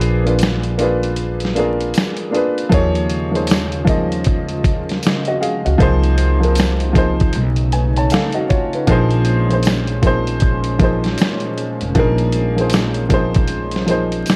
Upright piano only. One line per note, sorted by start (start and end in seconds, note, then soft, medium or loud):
0.00 0.19 A#3 loud
0.00 0.20 D4 loud
0.00 0.20 F4 loud
0.00 0.21 G#4 loud
0.00 0.21 B4 loud
0.24 0.75 A#3 medium
0.24 0.75 D4 medium
0.24 0.76 F4 medium
0.24 0.76 G#4 medium
0.29 0.77 B4 medium
0.78 1.51 A#3 medium
0.78 1.51 D4 medium
0.78 1.52 F4 medium
0.78 1.52 G#4 medium
0.82 1.53 B4 loud
1.55 2.27 A#3 medium
1.55 2.28 D4 medium
1.55 2.29 F4 medium
1.55 2.29 G#4 medium
1.59 2.30 A#4 medium
2.31 2.68 A#3 medium
2.31 2.69 D4 medium
2.31 2.69 F4 medium
2.31 2.70 G#4 medium
2.36 2.71 B4 medium
2.69 3.27 F3 loud
2.69 3.27 A#3 medium
2.69 3.28 D#4 medium
2.69 3.28 G#4 medium
2.74 3.29 C#5 loud
3.31 3.82 F3 medium
3.31 3.83 A#3 medium
3.31 3.83 D#4 medium
3.31 3.84 G#4 medium
3.36 3.84 C5 medium
3.85 4.58 F3 medium
3.85 4.58 A#3 medium
3.85 4.59 D#4 medium
3.85 4.60 G#4 medium
3.89 4.60 D#5 medium
5.28 5.42 F#4 medium
5.28 5.41 D#5 medium
5.41 5.65 G#4 medium
5.41 5.64 F5 medium
5.65 6.02 F#4 medium
5.65 6.02 D#5 medium
5.78 6.35 F3 loud
5.78 6.36 A#3 medium
5.78 6.36 D#4 medium
5.78 6.37 G#4 medium
5.83 6.37 C5 loud
6.40 6.90 F3 medium
6.40 6.91 A#3 medium
6.40 6.91 D#4 medium
6.40 6.92 G#4 medium
6.45 6.93 A#4 medium
6.93 7.33 F3 medium
6.93 7.33 A#3 medium
6.93 7.34 D#4 medium
6.93 7.34 G#4 medium
6.98 7.35 C5 medium
7.73 7.96 B4 soft
7.73 7.95 G#5 medium
7.97 8.11 C#5 medium
7.97 8.11 A5 medium
8.12 8.35 A4 medium
8.12 8.34 F5 medium
8.34 8.49 F#4 medium
8.34 8.49 D#5 medium
8.49 8.73 F4 medium
8.49 8.72 C#5 medium
8.74 8.88 D#4 soft
8.74 9.11 B4 medium
8.87 9.43 F3 loud
8.87 9.44 A#3 loud
8.87 9.44 D#4 loud
8.87 9.45 G#4 loud
8.92 9.46 C5 loud
9.49 9.99 F3 medium
9.49 9.99 A#3 medium
9.49 10.00 D#4 medium
9.49 10.00 G#4 medium
9.53 10.01 C5 medium
10.02 10.74 F3 medium
10.02 10.75 A#3 medium
10.02 10.75 D#4 medium
10.02 10.76 G#4 medium
10.07 10.77 C5 loud
10.79 11.87 F3 medium
10.79 11.87 A#3 medium
10.79 11.88 D#4 medium
10.79 11.89 G#4 medium
10.84 11.89 C5 medium
11.95 12.51 F3 loud
11.95 12.51 A#3 medium
11.95 12.52 D#4 loud
11.95 12.53 G#4 loud
11.99 12.53 A#4 loud
12.56 13.06 F3 medium
12.56 13.07 A#3 medium
12.56 13.07 D#4 medium
12.56 13.08 G#4 medium
12.61 13.08 C5 medium
13.09 13.82 F3 medium
13.09 13.82 A#3 medium
13.09 13.83 D#4 medium
13.09 13.83 G#4 medium
13.14 13.84 C5 loud
13.86 14.36 F3 medium
13.86 14.36 A#3 medium
13.86 14.36 D#4 medium
13.86 14.36 G#4 medium
13.91 14.36 C5 medium